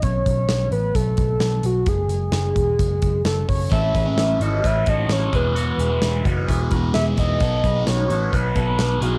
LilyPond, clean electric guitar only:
\new Staff \with { instrumentName = "Clean electric guitar" } { \time 4/4 \key a \lydian \tempo 4 = 130 r1 | r1 | <e' a'>8 <gis' b'>8 <e' b'>8 <fis' a'>8 <e' b'>8 <fis' a'>4 <e' gis'>8 | <b fis'>8 <e' gis'>8 <e' gis'>8 <dis' fis'>8 <e' gis'>8 <gis' b'>8 <e' gis'>4 |
<fis' a'>8 <gis' b'>8 <fis' b'>8 <fis' a'>8 <fis' b'>8 <fis' a'>4 <e' gis'>8 | }